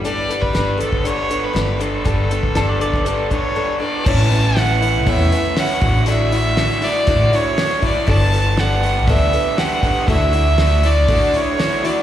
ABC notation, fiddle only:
X:1
M:4/4
L:1/16
Q:1/4=120
K:Glyd
V:1 name="Fiddle"
d3 B3 A2 c3 B3 A2- | A8- A2 c4 d2 | a4 f4 e4 f4 | e6 d4 c4 d2 |
a4 f4 e4 f4 | e6 d4 c4 d2 |]